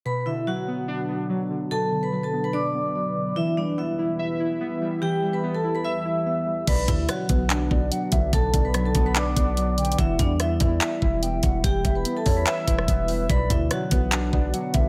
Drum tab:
CC |------------------------------------------------|------------------------------------------------|------------------------------------------------|------------------------------------------------|
HH |------------------------------------------------|------------------------------------------------|------------------------------------------------|------------------------------------------------|
CP |------------------------------------------------|------------------------------------------------|------------------------------------------------|------------------------------------------------|
SD |------------------------------------------------|------------------------------------------------|------------------------------------------------|------------------------------------------------|
BD |------------------------------------------------|------------------------------------------------|------------------------------------------------|------------------------------------------------|

CC |x-----------------------------------------------|------------------------------------------------|------------------------------------------------|------------------------------------------------|
HH |x-----x-----x-----x-----x-----------x-----x-----|x-----x-----x-----x-----x-----x-----x-----x-x-x-|x-----x-----x-----x-----x-----------x-----x-----|x-----x-----x-----o-----x-----x-----x-----o-----|
CP |------------------------x-----------------------|------------------------x-----------------------|------------------------x-----------------------|------------------------x-----------------------|
SD |------------r-----------------------------------|------------r-----------------------------------|------------r-----------------------------------|---------------------------------r--------------|
BD |o-----o-----------o-----------o-----------o-----|o-----o-----------o-----------o-----------------|o-----o-----------o-----------o-----------o-----|o-----o-----------o-----------o-----o-----------|

CC |------------------------------------------------|
HH |x-----x-----x-----x-----x-----------x-----x-----|
CP |------------------------x-----------------------|
SD |------------r-----------------------------------|
BD |o-----o-----------o-----------o-----------o-----|